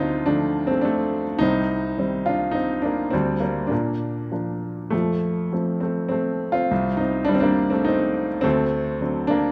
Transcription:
0.00 1.36 D2 medium
0.00 0.26 C4 medium
0.00 0.26 D4 medium
0.00 0.24 D#4 medium
0.00 1.43 F4 medium
0.26 1.37 D3 soft
0.26 1.38 F3 soft
0.26 0.69 A3 soft
0.26 0.71 D4 medium
0.67 0.83 A3 soft
0.67 0.83 C4 medium
0.81 1.24 A3 medium
0.81 1.23 D4 medium
1.39 3.09 C2 medium
1.39 1.98 C4 medium
1.39 2.28 D#4 medium
1.98 3.09 D#3 soft
1.98 3.09 G3 soft
1.98 2.53 C4 medium
2.26 2.54 D4 medium
2.26 2.55 F4 medium
2.51 2.81 C4 medium
2.51 2.83 D#4 medium
2.82 3.12 A#3 medium
2.82 3.10 D4 medium
3.11 3.70 D2 medium
3.11 3.40 G3 medium
3.11 3.39 C4 medium
3.40 3.70 G3 soft
3.40 3.69 A#3 medium
3.67 4.89 A#2 medium
3.67 4.31 A#3 medium
3.67 4.31 D4 medium
4.32 4.91 F3 soft
4.32 4.91 A#3 soft
4.32 4.91 D4 soft
4.90 6.67 F2 medium
4.90 5.51 F3 soft
4.90 5.51 A3 medium
5.52 6.67 F3 soft
5.52 5.82 A3 soft
5.52 5.79 C4 soft
5.80 6.10 A3 soft
5.80 6.07 C4 medium
6.09 6.53 A3 medium
6.09 6.51 C4 medium
6.52 6.96 C4 medium
6.52 7.00 F4 medium
6.71 8.41 C2 medium
6.97 7.27 C4 medium
6.97 7.28 D#4 medium
7.25 7.35 G3 medium
7.25 7.34 D4 medium
7.29 8.41 D#3 soft
7.29 7.33 C4 soft
7.35 7.42 C4 medium
7.40 7.71 A#3 medium
7.40 7.72 D4 medium
7.70 7.86 A3 medium
7.70 7.85 C4 medium
7.85 8.28 C4 medium
7.85 8.26 D#4 medium
8.41 9.52 D2 medium
8.41 9.26 A3 medium
8.41 9.00 C4 medium
9.01 9.52 D3 soft
9.01 9.52 F#3 soft
9.01 9.52 C4 medium
9.27 9.52 A#3 medium
9.27 9.52 D4 medium

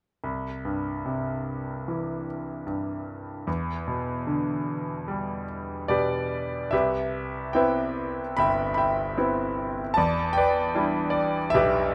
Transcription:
0.24 3.44 C2 soft
0.65 2.25 G2 soft
1.06 2.64 C3 soft
1.88 3.43 E3 soft
2.67 3.44 G2 soft
3.47 6.69 E2 soft
3.88 5.44 B2 soft
4.27 5.86 D3 soft
5.08 6.69 G3 soft
5.88 6.70 B2 soft
5.88 6.69 G4 soft
5.88 6.69 B4 soft
5.88 6.68 D5 medium
6.71 9.93 C2 soft
6.71 8.34 G4 soft
6.71 7.55 B4 soft
6.71 7.55 E5 medium
7.53 8.21 B3 soft
7.53 8.21 C4 soft
7.53 8.21 E4 soft
7.53 9.14 B4 soft
7.53 8.38 E5 soft
7.53 8.37 G5 soft
8.37 9.93 G1 soft
8.37 8.76 E5 soft
8.37 8.76 G5 soft
8.37 8.73 B5 medium
8.74 9.93 E5 soft
8.74 9.93 G5 soft
8.74 9.91 B5 medium
9.18 9.81 B3 soft
9.18 9.81 C4 soft
9.18 9.81 E4 soft
9.94 11.95 E2 medium
9.94 10.36 D5 soft
9.94 10.36 A5 medium
10.33 11.15 G5 medium
10.37 11.54 B4 soft
10.37 11.09 D5 medium
10.75 11.37 G3 soft
10.75 11.38 D4 soft
10.75 11.38 E4 soft
11.10 11.53 D5 medium
11.50 11.95 E5 medium
11.54 11.95 B1 soft
11.54 11.95 G4 medium
11.54 11.95 B4 medium

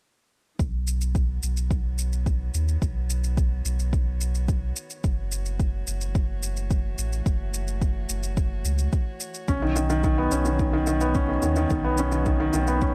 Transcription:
0.59 1.39 B1 medium
0.59 5.04 D#3 medium
0.59 kick medium
0.59 shaker soft
0.85 6.55 B3 medium
0.85 shaker medium
1.01 shaker soft
1.15 12.95 F#4 medium
1.15 kick medium
1.15 shaker soft
1.43 2.50 B1 medium
1.43 shaker medium
1.57 shaker soft
1.71 12.95 C#5 medium
1.71 kick medium
1.71 shaker soft
1.98 shaker medium
2.13 shaker soft
2.26 kick medium
2.26 shaker soft
2.54 2.77 D#2 medium
2.54 shaker medium
2.68 shaker soft
2.82 3.61 B1 medium
2.82 kick medium
2.82 shaker soft
3.10 shaker medium
3.24 shaker soft
3.37 kick medium
3.37 shaker soft
3.65 4.72 B1 medium
3.65 shaker medium
3.79 shaker soft
3.93 kick medium
3.93 shaker soft
4.21 shaker medium
4.35 shaker soft
4.48 kick loud
4.48 shaker soft
4.76 shaker medium
4.90 shaker soft
5.04 5.84 F#1 medium
5.04 9.48 E3 medium
5.04 kick loud
5.04 shaker soft
5.24 9.48 A3 medium
5.32 shaker medium
5.46 shaker soft
5.60 kick medium
5.60 shaker soft
5.87 6.95 F#1 medium
5.87 shaker medium
6.01 shaker soft
6.15 kick loud
6.15 shaker soft
6.43 shaker medium
6.57 shaker soft
6.71 kick medium
6.71 shaker soft
6.98 7.21 A1 medium
6.98 shaker medium
7.13 shaker soft
7.26 8.06 F#1 medium
7.26 kick loud
7.26 shaker soft
7.54 shaker medium
7.68 shaker soft
7.82 kick medium
7.82 shaker soft
8.09 8.64 F#1 medium
8.09 shaker medium
8.23 shaker soft
8.37 kick medium
8.37 shaker soft
8.65 8.88 C#2 medium
8.65 shaker medium
8.78 shaker soft
8.92 kick medium
8.92 shaker soft
9.20 shaker medium
9.34 shaker soft
9.48 10.28 B1 medium
9.48 12.95 D#3 medium
9.48 9.61 C#4 medium
9.48 kick medium
9.48 shaker soft
9.62 9.75 D#3 medium
9.76 9.88 D#3 medium
9.76 shaker medium
9.90 10.02 D#3 medium
9.90 shaker soft
10.04 10.17 D#3 medium
10.04 12.95 B3 medium
10.04 kick medium
10.04 shaker soft
10.18 10.31 B3 medium
10.31 11.39 B1 medium
10.31 10.45 C#4 medium
10.31 shaker medium
10.45 10.58 D#3 medium
10.45 shaker soft
10.59 10.72 D#3 medium
10.59 kick loud
10.59 shaker soft
10.73 10.86 D#3 medium
10.87 11.00 D#3 medium
10.87 shaker medium
11.01 11.14 B3 medium
11.01 shaker soft
11.14 11.28 C#4 medium
11.14 kick medium
11.14 shaker soft
11.29 11.41 D#3 medium
11.42 11.66 D#2 medium
11.42 11.55 D#3 medium
11.42 shaker medium
11.56 11.69 D#3 medium
11.56 shaker soft
11.70 12.50 B1 medium
11.70 11.84 D#3 medium
11.70 kick medium
11.70 shaker soft
11.84 11.98 B3 medium
11.98 12.12 C#4 medium
11.98 shaker medium
12.12 12.24 D#3 medium
12.12 shaker soft
12.26 12.38 D#3 medium
12.26 kick medium
12.26 shaker soft
12.40 12.52 D#3 medium
12.53 12.95 B1 medium
12.53 12.67 D#3 medium
12.53 shaker medium
12.67 12.81 B3 medium
12.67 shaker soft
12.81 12.95 C#4 medium
12.81 kick medium
12.81 shaker soft

